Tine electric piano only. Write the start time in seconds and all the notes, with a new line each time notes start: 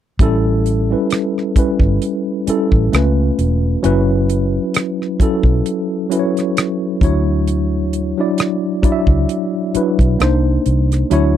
0.20 G3 C#4 E4 A4
0.90 G3 C#4 E4 B4
1.56 G3 C#4 E4 B4
2.47 G3 C#4 E4 A4
2.92 A3 C#4 F4 B4
3.83 F#3 C#4 E4 B4
5.20 F#3 C#4 E4 A4
6.10 F#3 C#4 E4 B4
6.19 C#5
7.01 F#3 D4 E4 C#5
8.18 F#3 D4 E4 D5
8.83 F#3 D4 E4 D5
8.92 E5
9.74 F#3 D4 E4 B4
10.19 A#3 D4 D#4 C5
11.10 F#3 D4 E4 C#5